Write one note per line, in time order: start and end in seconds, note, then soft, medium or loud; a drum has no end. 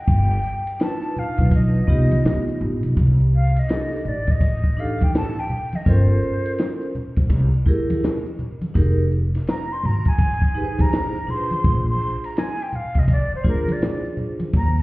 0.00 0.84 G5 medium
0.07 0.38 G1 loud
0.07 kick loud
0.07 ride medium
0.07 maracas medium
0.31 maracas soft
0.43 maracas soft
0.67 ride medium
0.67 maracas soft
0.79 1.83 D4 medium
0.79 1.83 D#4 soft
0.79 1.84 F4 medium
0.79 1.84 B4 medium
0.79 1.20 A5 medium
0.79 snare loud
0.79 hi-hat pedal soft
0.79 ride medium
0.79 maracas medium
1.03 maracas soft
1.16 1.54 F5 medium
1.16 low conga medium
1.16 maracas soft
1.38 1.79 B1 medium
1.38 kick medium
1.38 snare soft
1.38 ride medium
1.38 maracas soft
1.51 2.58 D#5 medium
1.51 kick medium
1.51 ride medium
1.51 high conga soft
1.51 maracas medium
1.75 maracas soft
1.87 2.18 C2 medium
1.87 2.91 B3 medium
1.87 2.92 D#4 medium
1.87 2.92 F4 medium
1.87 2.92 G4 medium
1.87 kick medium
1.87 maracas soft
2.11 ride medium
2.11 high conga medium
2.11 maracas soft
2.25 2.44 D2 medium
2.25 snare loud
2.25 hi-hat pedal soft
2.25 ride medium
2.25 low conga medium
2.25 maracas medium
2.48 maracas soft
2.61 2.80 A1 medium
2.61 low conga medium
2.61 maracas soft
2.83 2.95 B1 medium
2.83 ride soft
2.83 maracas soft
2.97 3.57 C2 loud
2.97 kick loud
2.97 ride medium
2.97 maracas medium
3.20 maracas soft
3.33 3.60 F5 medium
3.33 maracas soft
3.56 4.09 D#5 medium
3.56 ride medium
3.56 maracas soft
3.68 3.97 D4 medium
3.68 3.97 D#4 medium
3.68 3.98 G4 medium
3.68 3.98 A4 medium
3.68 snare loud
3.68 hi-hat pedal soft
3.68 ride medium
3.68 maracas medium
3.92 snare soft
3.92 maracas soft
4.05 5.33 A1 medium
4.05 4.32 D5 medium
4.05 low conga medium
4.05 maracas soft
4.27 4.81 D#5 medium
4.27 kick medium
4.27 ride medium
4.27 maracas soft
4.41 kick medium
4.41 ride medium
4.41 maracas medium
4.64 kick medium
4.64 maracas soft
4.77 5.32 D4 medium
4.77 5.32 D#4 medium
4.77 5.33 G4 medium
4.77 5.33 A4 medium
4.77 5.05 F5 medium
4.77 maracas soft
5.01 5.15 G5 medium
5.01 kick medium
5.01 ride medium
5.01 high conga medium
5.01 maracas soft
5.14 5.41 A5 loud
5.14 snare loud
5.14 hi-hat pedal soft
5.14 ride medium
5.14 low conga medium
5.14 maracas medium
5.37 5.77 G5 medium
5.37 maracas soft
5.50 low conga medium
5.50 maracas soft
5.72 5.90 D#5 medium
5.72 ride soft
5.72 high conga medium
5.72 maracas soft
5.85 6.16 G1 medium
5.85 6.89 C#4 medium
5.85 6.89 F4 medium
5.85 6.90 A4 medium
5.85 6.90 A#4 medium
5.85 6.96 C5 medium
5.85 kick loud
5.85 ride medium
5.85 maracas medium
6.09 maracas soft
6.22 maracas soft
6.45 ride medium
6.45 maracas soft
6.58 snare loud
6.58 hi-hat pedal soft
6.58 ride medium
6.58 maracas medium
6.81 maracas soft
6.95 low conga medium
6.95 maracas soft
7.16 7.28 A#1 medium
7.16 kick medium
7.16 ride medium
7.16 maracas soft
7.29 7.49 C2 loud
7.29 kick medium
7.29 ride medium
7.29 maracas medium
7.53 muted upright bass stroke soft
7.53 maracas soft
7.66 7.96 D2 medium
7.66 8.12 E4 medium
7.66 8.12 G4 medium
7.66 8.13 G#4 medium
7.66 8.13 A#4 medium
7.66 kick medium
7.66 maracas soft
7.90 ride medium
7.90 high conga medium
7.90 maracas soft
8.03 snare loud
8.03 hi-hat pedal soft
8.03 ride medium
8.03 low conga medium
8.03 maracas medium
8.26 maracas soft
8.39 low conga medium
8.39 maracas soft
8.61 ride soft
8.61 high conga medium
8.61 maracas soft
8.74 9.35 F1 loud
8.74 9.03 D#4 medium
8.74 9.03 G4 medium
8.74 9.04 G#4 medium
8.74 9.04 A#4 medium
8.74 kick loud
8.74 ride medium
8.74 maracas medium
8.98 maracas soft
9.11 maracas soft
9.35 snare soft
9.35 ride medium
9.35 maracas soft
9.47 9.74 A#5 medium
9.47 snare loud
9.47 hi-hat pedal soft
9.47 ride medium
9.47 maracas medium
9.70 9.87 C6 medium
9.70 maracas soft
9.83 11.11 G#1 medium
9.83 10.10 A#5 loud
9.83 low conga medium
9.83 maracas soft
10.05 10.83 G#5 loud
10.05 kick medium
10.05 ride medium
10.05 maracas medium
10.18 kick loud
10.18 ride medium
10.18 maracas medium
10.42 kick medium
10.42 maracas soft
10.55 11.10 D#4 medium
10.55 11.10 G4 medium
10.55 11.11 G#4 medium
10.55 10.65 B4 medium
10.55 maracas soft
10.64 11.15 C5 medium
10.79 11.32 A#5 loud
10.79 kick medium
10.79 ride medium
10.79 high conga medium
10.79 maracas soft
10.93 snare loud
10.93 hi-hat pedal soft
10.93 ride medium
10.93 low conga medium
10.93 maracas medium
11.15 maracas soft
11.27 12.31 D4 medium
11.27 12.31 F4 medium
11.27 12.32 G#4 medium
11.27 11.37 B4 medium
11.27 11.89 C6 loud
11.27 low conga medium
11.27 maracas soft
11.36 12.35 C5 medium
11.51 ride soft
11.51 high conga medium
11.51 maracas soft
11.64 11.94 A#1 loud
11.64 kick loud
11.64 ride medium
11.64 maracas medium
11.88 12.27 C6 medium
11.88 maracas soft
12.01 maracas soft
12.24 12.40 A#5 medium
12.24 ride medium
12.24 maracas soft
12.37 12.64 G#5 medium
12.37 snare loud
12.37 hi-hat pedal soft
12.37 ride medium
12.37 maracas medium
12.59 12.77 G5 medium
12.59 maracas soft
12.73 13.01 F5 medium
12.73 low conga medium
12.73 maracas soft
12.95 13.06 C2 medium
12.95 kick medium
12.95 snare soft
12.95 ride soft
12.95 maracas soft
12.99 13.10 D#5 medium
13.08 kick medium
13.08 ride medium
13.08 maracas medium
13.12 13.32 D5 medium
13.32 13.46 C5 medium
13.32 muted upright bass stroke soft
13.32 maracas soft
13.44 13.75 D2 medium
13.44 14.48 D4 medium
13.44 14.48 F4 medium
13.44 14.48 G#4 medium
13.44 14.49 C5 medium
13.44 kick medium
13.44 maracas soft
13.49 13.74 A#4 medium
13.68 ride medium
13.68 high conga medium
13.68 maracas soft
13.72 14.13 D5 medium
13.81 snare loud
13.81 hi-hat pedal soft
13.81 ride medium
13.81 low conga medium
13.81 maracas medium
14.04 maracas soft
14.17 low conga medium
14.17 maracas soft
14.39 ride soft
14.39 high conga medium
14.39 maracas soft
14.53 14.82 D#2 loud
14.53 kick loud
14.53 ride medium
14.53 maracas medium
14.57 14.82 A#5 medium
14.77 maracas soft